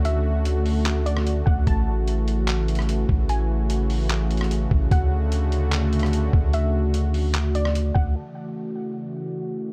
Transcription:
0.00 1.43 D2 loud
0.00 1.63 C#3 medium
0.00 1.64 D3 medium
0.00 4.87 A3 medium
0.00 4.87 F#4 medium
0.05 1.02 E5 loud
0.05 closed hi-hat medium
0.45 closed hi-hat medium
0.66 open hi-hat medium
0.86 clap loud
0.86 closed hi-hat medium
1.06 1.44 D5 medium
1.06 closed hi-hat medium
1.17 cross-stick medium
1.27 closed hi-hat medium
1.46 1.66 D2 loud
1.46 1.66 F#5 medium
1.46 kick loud
1.67 3.05 A1 loud
1.67 8.12 C#3 medium
1.67 4.88 E3 medium
1.67 3.25 A5 loud
1.67 kick loud
1.67 closed hi-hat medium
2.08 closed hi-hat medium
2.28 closed hi-hat medium
2.48 clap loud
2.48 closed hi-hat medium
2.68 closed hi-hat medium
2.75 cross-stick medium
2.75 closed hi-hat medium
2.82 closed hi-hat soft
2.89 closed hi-hat medium
3.09 4.67 A1 loud
3.09 kick loud
3.29 4.88 G#5 medium
3.29 closed hi-hat medium
3.70 closed hi-hat medium
3.90 open hi-hat medium
4.10 clap loud
4.10 closed hi-hat medium
4.31 closed hi-hat medium
4.37 cross-stick medium
4.37 closed hi-hat medium
4.44 closed hi-hat soft
4.51 closed hi-hat medium
4.71 4.91 A1 loud
4.71 kick loud
4.91 6.29 D2 loud
4.91 8.12 D3 medium
4.91 8.12 A3 medium
4.91 8.12 F#4 medium
4.91 6.50 F#5 loud
4.91 kick loud
4.91 closed hi-hat medium
5.32 closed hi-hat medium
5.52 closed hi-hat medium
5.72 clap loud
5.72 closed hi-hat medium
5.93 closed hi-hat medium
5.99 cross-stick medium
5.99 closed hi-hat medium
6.06 closed hi-hat soft
6.13 closed hi-hat medium
6.33 7.91 D2 loud
6.33 kick loud
6.53 7.51 E5 loud
6.53 closed hi-hat medium
6.94 closed hi-hat medium
7.14 open hi-hat medium
7.35 clap loud
7.35 closed hi-hat medium
7.55 7.93 D5 medium
7.55 closed hi-hat medium
7.65 cross-stick medium
7.75 closed hi-hat medium
7.95 8.15 D2 loud
7.95 8.14 F#5 medium
7.95 kick loud
8.16 9.73 C#3 medium
8.16 9.73 E3 medium
8.16 9.73 A3 medium
8.16 9.73 F#4 medium
8.16 9.73 A5 medium

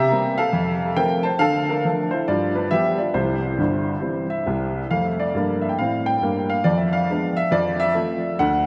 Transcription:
0.00 0.11 C3 medium
0.00 0.34 G4 medium
0.00 0.37 E5 loud
0.00 0.12 A#5 loud
0.11 0.35 G3 medium
0.11 0.35 A#3 soft
0.11 0.36 C4 soft
0.38 0.93 A4 medium
0.38 0.97 F5 medium
0.53 0.90 F2 medium
0.96 1.20 F3 soft
0.96 1.21 A3 soft
0.96 1.21 C4 soft
0.96 1.23 A#4 medium
0.96 1.24 G5 medium
1.23 1.39 C5 medium
1.23 1.40 A5 medium
1.39 1.77 D3 medium
1.39 1.66 A4 medium
1.39 1.68 F5 loud
1.69 1.84 D4 medium
1.69 2.12 A#4 medium
1.85 2.08 F3 soft
1.85 2.09 A3 soft
1.85 2.09 D4 soft
2.11 2.27 E4 medium
2.11 2.27 C5 medium
2.28 2.65 G2 medium
2.28 2.55 F4 medium
2.28 2.56 D5 medium
2.55 2.71 D4 medium
2.55 2.71 B4 medium
2.71 2.95 F3 soft
2.71 2.95 G3 soft
2.71 2.96 B3 soft
2.71 2.98 G4 medium
2.71 2.99 E5 loud
2.98 3.14 F4 soft
2.98 3.14 D5 medium
3.14 3.49 C2 medium
3.14 3.49 C3 medium
3.14 4.42 E4 medium
3.14 4.45 C5 medium
3.58 3.94 G1 medium
3.58 3.93 G2 medium
4.02 4.26 E3 soft
4.02 4.26 G3 soft
4.02 4.26 C4 soft
4.30 4.89 E5 medium
4.46 4.81 C2 medium
4.46 4.81 C3 medium
4.91 5.25 F2 medium
4.91 5.26 A3 medium
4.91 5.04 F5 medium
5.05 5.18 E5 soft
5.20 5.62 D5 medium
5.34 5.69 G2 medium
5.34 5.70 A#3 medium
5.61 5.69 E5 medium
5.69 5.77 G5 medium
5.79 6.13 A2 medium
5.79 6.14 C4 medium
5.79 6.05 F5 medium
6.06 6.49 G5 medium
6.22 6.56 G2 medium
6.22 6.57 A#3 medium
6.50 6.65 F5 medium
6.64 7.01 F2 medium
6.64 7.01 F3 medium
6.64 6.78 D5 medium
6.77 6.92 E5 medium
6.93 7.36 F5 medium
7.10 7.33 G#3 soft
7.10 7.34 B3 soft
7.10 7.34 D4 soft
7.37 7.52 E5 medium
7.51 7.88 F2 medium
7.51 7.89 F3 medium
7.51 7.79 D5 medium
7.80 8.39 E5 loud
7.95 8.19 A3 soft
7.95 8.19 C4 soft
7.95 8.19 F4 medium
8.39 8.66 D2 medium
8.39 8.66 D3 medium
8.39 8.66 F#5 medium

